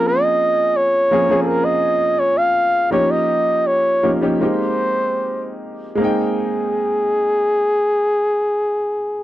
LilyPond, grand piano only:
\new Staff \with { instrumentName = "Grand piano" } { \time 4/4 \key aes \major \tempo 4 = 78 <f bes c' des' aes'>4. <f bes c' des' aes'>16 <f bes c' des' aes'>2 r16 | <f bes des' ees' g'>4. <f bes des' ees' g'>16 <f bes des' ees' g'>16 <aes bes c' ees' g'>2 | <aes bes c' ees' g''>1 | }